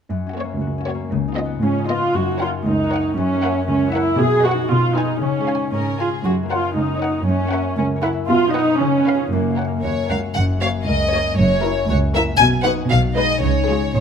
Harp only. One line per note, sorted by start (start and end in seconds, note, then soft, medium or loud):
0.10 1.14 F#2 soft
0.27 0.77 C#4 soft
0.44 0.93 A#3 soft
0.61 1.14 F#4 soft
0.78 3.00 C#4 soft
0.95 1.14 A#3 soft
1.12 2.17 C#3 soft
1.28 1.78 D#4 soft
1.45 1.95 B3 soft
1.62 2.17 F4 soft
1.79 2.16 D#4 soft
1.97 2.17 B3 soft
2.14 3.16 F#2 soft
2.32 3.34 A#3 soft
2.49 2.82 F#4 soft
2.66 3.68 A#4 soft
2.83 3.50 F#4 soft
3.01 4.22 C#4 soft
3.17 4.22 F#2 soft
3.35 4.22 A#3 soft
3.52 3.85 F#4 soft
3.69 4.22 A#4 soft
3.86 4.53 F#4 soft
4.03 4.22 E4 soft
4.20 4.70 B2 soft
4.36 4.87 B3 soft
4.54 5.04 D#4 soft
4.54 4.73 F#4 soft
4.71 5.24 B2 soft
4.88 5.24 B3 soft
5.05 5.24 D#4 soft
5.05 5.72 G#4 soft
5.22 6.27 C#3 soft
5.39 6.27 G#3 soft
5.56 5.89 C#5 soft
5.74 6.27 G#4 soft
5.91 6.59 C#5 soft
6.08 6.27 F4 soft
6.26 7.27 F#2 soft
6.43 7.44 A#3 soft
6.60 6.93 C#5 soft
6.77 7.78 A#4 soft
6.94 7.61 C#5 soft
7.12 8.83 F#4 soft
7.28 8.32 F#2 soft
7.45 8.31 A#3 soft
7.62 7.95 C#5 soft
7.79 8.31 A#4 soft
7.96 8.32 C#5 soft
8.13 8.31 E4 soft
8.30 8.83 B2 soft
8.47 8.97 B3 soft
8.64 8.83 D#4 soft
8.64 9.35 B4 soft
8.81 9.35 C#3 medium
8.98 9.34 B3 soft
9.15 9.34 F4 soft
9.15 9.34 G#4 soft
9.33 10.36 F#2 soft
9.50 10.61 A#3 soft
9.68 10.01 A#4 soft
9.85 10.19 F#4 soft
10.02 10.87 A#4 soft
10.20 11.89 F#4 soft
10.37 11.38 F#2 soft
10.62 11.13 A#3 soft
10.88 12.42 A#4 soft
11.14 11.64 A#3 soft
11.40 12.43 F#2 soft
11.65 12.15 A#3 soft
11.90 12.65 F#4 soft
12.16 12.43 A#3 soft
12.41 12.91 B2 medium
12.66 13.16 D#4 soft
12.66 12.94 F#4 soft
12.93 13.45 B2 medium
13.17 13.45 D#4 soft
13.17 13.93 G#4 soft
13.43 14.00 C#3 soft
13.69 14.00 G#3 soft
13.95 14.00 G#4 soft